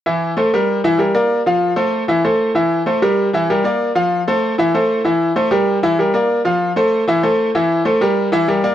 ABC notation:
X:1
M:4/4
L:1/8
Q:1/4=192
K:Aphr
V:1 name="Grand piano"
[E,Ee]2 [A,Ac] [G,GB]2 [E,Ee] [G,GB] [B,Bd]- | [B,Bd] [F,Ff]2 [A,Ac]2 [E,Ee] [A,Ac]2 | [E,Ee]2 [A,Ac] [G,GB]2 [E,Ee] [G,GB] [B,Bd]- | [B,Bd] [F,Ff]2 [A,Ac]2 [E,Ee] [A,Ac]2 |
[E,Ee]2 [A,Ac] [G,GB]2 [E,Ee] [G,GB] [B,Bd]- | [B,Bd] [F,Ff]2 [A,Ac]2 [E,Ee] [A,Ac]2 | [E,Ee]2 [A,Ac] [G,GB]2 [E,Ee] [G,GB] [B,Bd] |]